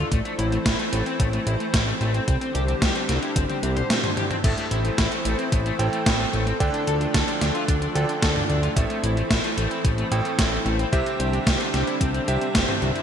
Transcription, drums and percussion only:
0.12 kick, closed hi-hat
0.25 closed hi-hat
0.39 closed hi-hat
0.52 closed hi-hat
0.66 kick, snare, closed hi-hat
0.79 closed hi-hat
0.93 closed hi-hat
1.06 closed hi-hat
1.20 kick, closed hi-hat
1.33 closed hi-hat
1.47 closed hi-hat
1.60 closed hi-hat
1.74 kick, snare, closed hi-hat
2.01 closed hi-hat
2.14 closed hi-hat
2.28 kick, closed hi-hat
2.41 closed hi-hat
2.55 closed hi-hat
2.68 closed hi-hat
2.82 kick, snare, closed hi-hat
2.95 closed hi-hat
3.09 snare, closed hi-hat
3.23 closed hi-hat
3.36 kick, closed hi-hat, high tom
3.50 closed hi-hat, high tom
3.63 closed hi-hat
3.77 closed hi-hat, mid tom
3.90 snare, closed hi-hat, mid tom
4.04 closed hi-hat, mid tom
4.17 closed hi-hat, mid tom
4.31 closed hi-hat, mid tom
4.44 kick, closed hi-hat, crash
4.58 closed hi-hat
4.71 closed hi-hat
4.85 closed hi-hat
4.98 kick, snare, closed hi-hat
5.12 closed hi-hat
5.25 closed hi-hat
5.39 closed hi-hat
5.52 kick, closed hi-hat
5.66 closed hi-hat
5.79 closed hi-hat
5.93 closed hi-hat
6.06 kick, snare, closed hi-hat
6.33 closed hi-hat
6.47 closed hi-hat
6.60 kick, closed hi-hat
6.74 closed hi-hat
6.87 closed hi-hat
7.01 closed hi-hat
7.14 kick, snare, closed hi-hat
7.28 closed hi-hat
7.41 snare, closed hi-hat
7.55 closed hi-hat
7.68 kick, closed hi-hat
7.82 closed hi-hat
7.95 closed hi-hat
8.09 closed hi-hat
8.22 kick, snare, closed hi-hat
8.36 mid tom
8.50 closed hi-hat
8.63 closed hi-hat
8.76 kick, closed hi-hat
8.90 closed hi-hat
9.04 closed hi-hat
9.17 closed hi-hat
9.31 kick, snare, closed hi-hat
9.44 closed hi-hat
9.58 closed hi-hat
9.71 closed hi-hat
9.85 kick, closed hi-hat
9.98 closed hi-hat
10.12 closed hi-hat
10.25 closed hi-hat
10.39 kick, snare, closed hi-hat
10.66 closed hi-hat
10.79 closed hi-hat
10.93 kick, closed hi-hat
11.06 closed hi-hat
11.20 closed hi-hat
11.33 closed hi-hat
11.47 kick, snare, closed hi-hat
11.60 closed hi-hat
11.74 snare, closed hi-hat
11.87 closed hi-hat
12.01 kick, closed hi-hat
12.14 closed hi-hat
12.28 closed hi-hat
12.41 closed hi-hat
12.55 kick, snare, closed hi-hat
12.68 mid tom
12.82 closed hi-hat
12.96 closed hi-hat

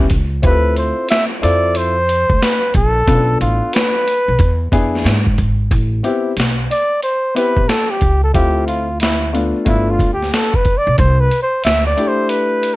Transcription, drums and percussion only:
0.10 kick, closed hi-hat
0.43 kick, closed hi-hat
0.76 closed hi-hat
1.09 snare, closed hi-hat
1.43 closed hi-hat
1.75 closed hi-hat
2.09 closed hi-hat
2.30 kick
2.42 snare, closed hi-hat
2.74 kick, closed hi-hat
3.08 kick, closed hi-hat
3.41 closed hi-hat
3.73 snare, closed hi-hat
4.08 closed hi-hat
4.39 kick, closed hi-hat
4.72 kick, closed hi-hat
4.95 snare
5.06 snare, closed hi-hat
5.27 kick
5.38 kick, closed hi-hat
5.71 kick, closed hi-hat
6.04 closed hi-hat
6.37 snare, closed hi-hat
6.71 closed hi-hat
7.02 closed hi-hat
7.36 closed hi-hat
7.57 kick
7.69 snare, closed hi-hat
8.01 kick, closed hi-hat
8.34 kick, closed hi-hat
8.68 closed hi-hat
9.00 snare, closed hi-hat
9.35 closed hi-hat
9.66 kick, closed hi-hat
9.99 kick, closed hi-hat
10.22 snare
10.34 snare, closed hi-hat
10.54 kick
10.65 kick, closed hi-hat
10.98 kick, closed hi-hat
11.31 closed hi-hat
11.64 snare, closed hi-hat
11.98 closed hi-hat
12.29 closed hi-hat
12.63 closed hi-hat

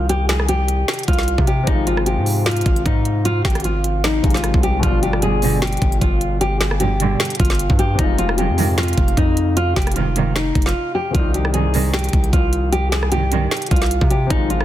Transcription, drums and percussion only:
0.09 closed hi-hat
0.29 finger snap, snare, closed hi-hat
0.40 cross-stick
0.49 closed hi-hat
0.68 closed hi-hat
0.88 finger snap, snare, closed hi-hat
0.94 closed hi-hat
0.99 closed hi-hat
1.03 closed hi-hat
1.08 kick, closed hi-hat
1.13 closed hi-hat
1.18 snare, closed hi-hat
1.23 closed hi-hat
1.28 closed hi-hat
1.38 kick
1.47 closed hi-hat
1.67 kick, closed hi-hat
1.87 closed hi-hat
1.97 cross-stick
2.06 closed hi-hat
2.26 open hi-hat
2.46 finger snap, snare, closed hi-hat
2.51 closed hi-hat
2.57 closed hi-hat
2.61 closed hi-hat
2.66 kick, closed hi-hat
2.76 closed hi-hat
2.86 kick, closed hi-hat
3.05 closed hi-hat
3.25 closed hi-hat
3.45 finger snap, kick, snare, closed hi-hat
3.50 closed hi-hat
3.55 cross-stick, closed hi-hat
3.60 closed hi-hat
3.64 closed hi-hat
3.84 closed hi-hat
4.04 finger snap, snare, closed hi-hat
4.24 kick, closed hi-hat
4.30 snare, closed hi-hat
4.37 closed hi-hat
4.44 cross-stick, closed hi-hat
4.54 kick
4.63 closed hi-hat
4.83 kick, closed hi-hat
5.03 closed hi-hat
5.13 cross-stick
5.22 closed hi-hat
5.42 open hi-hat
5.62 finger snap, snare, closed hi-hat
5.67 closed hi-hat
5.72 closed hi-hat
5.77 closed hi-hat
5.82 kick, closed hi-hat
5.92 closed hi-hat
6.01 kick, closed hi-hat
6.21 closed hi-hat
6.41 closed hi-hat
6.61 finger snap, snare, closed hi-hat
6.71 cross-stick
6.80 closed hi-hat
7.00 closed hi-hat
7.20 finger snap, snare, closed hi-hat
7.25 closed hi-hat
7.30 closed hi-hat
7.35 closed hi-hat
7.40 kick, closed hi-hat
7.45 closed hi-hat
7.50 snare, closed hi-hat
7.55 closed hi-hat
7.59 closed hi-hat
7.70 kick
7.79 closed hi-hat
7.99 kick, closed hi-hat
8.18 closed hi-hat
8.29 cross-stick
8.38 closed hi-hat
8.58 open hi-hat
8.78 finger snap, snare, closed hi-hat
8.83 closed hi-hat
8.88 closed hi-hat
8.93 closed hi-hat
8.98 kick, closed hi-hat
9.08 closed hi-hat
9.17 kick, closed hi-hat
9.37 closed hi-hat
9.57 closed hi-hat
9.76 finger snap, kick, snare, closed hi-hat
9.82 closed hi-hat
9.87 cross-stick, closed hi-hat
9.92 closed hi-hat
9.96 closed hi-hat
10.16 closed hi-hat
10.36 finger snap, snare, closed hi-hat
10.55 kick, closed hi-hat
10.62 snare, closed hi-hat
10.69 closed hi-hat
11.15 kick, closed hi-hat
11.34 closed hi-hat
11.45 cross-stick
11.54 closed hi-hat
11.74 open hi-hat
11.94 finger snap, snare, closed hi-hat
11.99 closed hi-hat
12.04 closed hi-hat
12.09 closed hi-hat
12.13 kick, closed hi-hat
12.24 closed hi-hat
12.33 kick, closed hi-hat
12.53 closed hi-hat
12.73 closed hi-hat
12.92 finger snap, snare, closed hi-hat
13.03 cross-stick
13.12 closed hi-hat
13.32 closed hi-hat
13.51 finger snap, snare, closed hi-hat
13.57 closed hi-hat
13.62 closed hi-hat
13.66 closed hi-hat
13.71 kick, closed hi-hat
13.76 closed hi-hat
13.82 snare, closed hi-hat
13.86 closed hi-hat
13.91 closed hi-hat
14.01 kick
14.11 closed hi-hat
14.30 kick, closed hi-hat
14.50 closed hi-hat
14.61 cross-stick

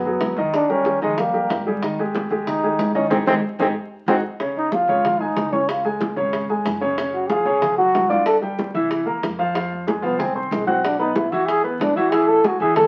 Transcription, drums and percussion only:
0.05 high conga
0.21 high bongo, low bongo, high conga
0.36 high conga
0.53 high bongo, high conga
0.70 high bongo, high conga
0.85 high bongo, high conga
1.02 high bongo, high conga
1.18 high bongo, high conga
1.35 high bongo, high conga
1.50 high bongo, low bongo, high conga
1.67 high conga
1.83 high bongo, high conga
1.99 high conga
2.15 high bongo, high conga
2.31 high conga
2.47 high bongo, high conga, low conga
2.64 high conga
2.79 high bongo, low bongo, high conga
2.95 high conga
3.11 low bongo, high conga
3.27 low bongo, high conga
3.60 low bongo, high conga
4.08 low bongo, high conga
4.40 high bongo, high conga
4.56 high conga
4.72 high bongo, high conga
4.88 high conga
5.05 high bongo, high conga, low conga
5.21 high conga
5.37 high bongo, low bongo, high conga
5.53 high conga
5.69 high bongo, high conga
5.85 high bongo, high conga
6.01 high bongo, high conga
6.17 high bongo, high conga
6.33 high bongo, high conga
6.49 high bongo, high conga
6.65 high bongo, low bongo, high conga
6.82 high conga
6.97 high bongo, high conga
7.14 high conga
7.29 high bongo, high conga
7.45 high conga
7.62 high bongo, high conga, low conga
7.79 high conga
7.95 high bongo, low bongo, high conga
8.11 high conga
8.26 high bongo, high conga
8.43 high bongo, high conga
8.59 high bongo, high conga
8.75 high bongo, high conga
8.91 high bongo, high conga
9.07 high bongo, high conga
9.23 high bongo, low bongo, high conga
9.40 high conga
9.55 high bongo, high conga
9.73 high conga
9.88 high bongo, high conga
10.04 high conga
10.20 high bongo, high conga, low conga
10.36 high conga
10.51 high bongo, low bongo, high conga
10.68 high conga
10.85 high bongo, high conga
11.00 high bongo, high conga
11.16 high bongo, high conga
11.32 high bongo, high conga
11.48 high bongo, high conga
11.65 high bongo, high conga
11.81 high bongo, low bongo, high conga
11.97 high conga
12.12 high bongo, high conga
12.29 high conga
12.44 high bongo, high conga
12.61 high conga
12.76 high bongo, high conga, low conga

